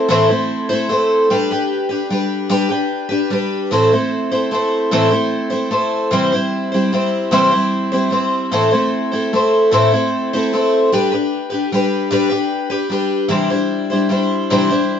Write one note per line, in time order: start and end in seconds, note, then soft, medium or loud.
0.00 0.10 E4 medium
0.09 0.29 A2 medium
0.09 0.30 E3 medium
0.09 0.30 A3 medium
0.09 0.30 C4 loud
0.09 0.29 E4 medium
0.09 0.28 C5 medium
0.29 0.71 A3 medium
0.29 0.71 C4 medium
0.29 0.69 E4 medium
0.29 0.68 C5 medium
0.69 0.88 A3 medium
0.69 0.89 C4 medium
0.69 0.90 E4 medium
0.69 0.90 C5 medium
0.89 1.30 A3 medium
0.89 1.30 C4 medium
0.89 1.30 E4 medium
0.89 1.31 C5 medium
1.30 1.50 G3 medium
1.30 1.51 D4 medium
1.30 1.51 G4 medium
1.30 1.50 B4 medium
1.51 1.91 D4 soft
1.51 1.90 G4 medium
1.51 1.88 B4 medium
1.89 2.09 D4 soft
1.89 2.11 G4 medium
1.89 2.10 B4 medium
2.10 2.48 G3 medium
2.10 2.49 D4 medium
2.10 2.50 G4 medium
2.10 2.50 B4 medium
2.49 2.70 G3 medium
2.49 2.70 D4 medium
2.49 2.70 G4 medium
2.49 2.68 B4 medium
2.69 3.11 D4 medium
2.69 3.10 G4 medium
2.69 3.08 B4 medium
3.09 3.30 D4 soft
3.09 3.31 G4 medium
3.09 3.30 B4 medium
3.30 3.71 G3 medium
3.30 3.71 D4 medium
3.30 3.72 G4 medium
3.30 3.72 B4 medium
3.71 3.91 A2 medium
3.71 3.92 E3 medium
3.71 3.92 A3 medium
3.71 3.91 C4 medium
3.71 3.92 E4 medium
3.71 3.91 C5 medium
3.92 4.33 A3 soft
3.92 4.31 C4 medium
3.92 4.31 E4 medium
3.92 4.30 C5 medium
4.31 4.50 A3 soft
4.31 4.51 C4 medium
4.31 4.52 E4 soft
4.31 4.51 C5 medium
4.51 4.91 A3 medium
4.51 4.91 C4 medium
4.51 4.92 E4 medium
4.51 4.92 C5 medium
4.91 5.11 A2 medium
4.91 5.12 E3 medium
4.91 5.12 A3 medium
4.91 5.10 C4 medium
4.91 5.09 E4 medium
4.91 5.08 C5 loud
5.09 5.51 C4 medium
5.09 5.49 E4 medium
5.09 5.49 C5 medium
5.13 5.52 A3 medium
5.50 5.69 A3 medium
5.50 5.70 C4 medium
5.50 5.71 E4 medium
5.50 5.71 C5 medium
5.71 6.11 A3 medium
5.71 6.11 C4 medium
5.71 6.12 E4 medium
5.71 6.12 C5 medium
6.11 6.31 C3 medium
6.11 6.32 E3 medium
6.11 6.32 G3 medium
6.11 6.32 C4 medium
6.11 6.32 E4 medium
6.11 6.31 C5 medium
6.32 6.73 G3 soft
6.32 6.73 C4 medium
6.32 6.73 E4 medium
6.32 6.70 C5 medium
6.72 6.91 G3 medium
6.72 6.92 C4 medium
6.72 6.93 E4 medium
6.72 6.92 C5 medium
6.92 7.31 G3 medium
6.92 7.31 C4 medium
6.92 7.31 E4 medium
6.92 7.32 C5 medium
7.31 7.51 C3 medium
7.31 7.52 E3 medium
7.31 7.52 G3 medium
7.31 7.52 C4 medium
7.31 7.51 E4 medium
7.31 7.50 C5 loud
7.51 7.93 G3 soft
7.51 7.92 C4 medium
7.51 7.92 E4 medium
7.51 7.91 C5 medium
7.92 8.09 G3 soft
7.92 8.11 C4 soft
7.92 8.12 E4 medium
7.92 8.12 C5 medium
8.10 8.51 G3 medium
8.10 8.52 C4 medium
8.10 8.52 E4 medium
8.10 8.52 C5 medium
8.52 8.71 A2 medium
8.52 8.72 E3 medium
8.52 8.72 A3 medium
8.52 8.72 C4 medium
8.52 8.71 E4 medium
8.52 8.70 C5 medium
8.71 9.13 A3 medium
8.71 9.12 C4 medium
8.71 9.12 E4 medium
8.71 9.10 C5 medium
9.12 9.32 A3 medium
9.12 9.32 C4 soft
9.12 9.32 E4 medium
9.12 9.31 C5 medium
9.33 9.71 A3 medium
9.33 9.71 C4 medium
9.33 9.72 E4 medium
9.33 9.73 C5 medium
9.71 9.91 A2 medium
9.71 9.92 E3 medium
9.71 9.92 A3 medium
9.71 9.92 C4 medium
9.71 9.92 E4 loud
9.71 9.91 C5 loud
9.92 10.33 A3 medium
9.92 10.32 C4 medium
9.92 10.32 E4 medium
9.92 10.32 C5 medium
10.33 10.52 A3 medium
10.33 10.52 C4 medium
10.33 10.53 E4 medium
10.33 10.52 C5 medium
10.53 10.92 A3 medium
10.53 10.92 C4 medium
10.53 10.93 E4 medium
10.53 10.94 C5 medium
10.92 11.12 G3 medium
10.92 11.12 D4 medium
10.92 11.12 G4 medium
10.92 11.10 B4 medium
11.12 11.53 D4 soft
11.12 11.51 G4 medium
11.12 11.49 B4 medium
11.50 11.72 D4 soft
11.50 11.71 G4 soft
11.50 11.70 B4 medium
11.72 12.09 G3 medium
11.72 12.11 D4 medium
11.72 12.10 G4 medium
11.72 12.11 B4 medium
12.11 12.31 G3 medium
12.11 12.31 D4 medium
12.11 12.30 G4 medium
12.11 12.28 B4 medium
12.29 12.71 D4 soft
12.29 12.70 G4 medium
12.29 12.69 B4 medium
12.70 12.90 D4 medium
12.70 12.91 G4 medium
12.70 12.90 B4 medium
12.90 13.28 G3 medium
12.90 13.29 D4 medium
12.90 13.30 G4 medium
12.90 13.31 B4 medium
13.28 13.49 C3 medium
13.28 13.49 E3 medium
13.28 13.50 G3 medium
13.28 13.50 D4 medium
13.28 13.50 E4 medium
13.28 13.49 C5 medium
13.50 13.91 G3 soft
13.50 13.91 D4 medium
13.50 13.90 E4 soft
13.50 13.89 C5 medium
13.90 14.08 G3 soft
13.90 14.09 D4 soft
13.90 14.10 E4 soft
13.90 14.10 C5 soft
14.09 14.49 G3 medium
14.09 14.50 D4 medium
14.09 14.51 E4 medium
14.09 14.51 C5 medium
14.50 14.70 C3 medium
14.50 14.70 E3 medium
14.50 14.70 G3 medium
14.50 14.70 D4 medium
14.50 14.69 E4 medium
14.50 14.68 C5 medium
14.69 15.00 G3 soft
14.69 15.00 D4 medium
14.69 15.00 E4 medium
14.69 15.00 C5 medium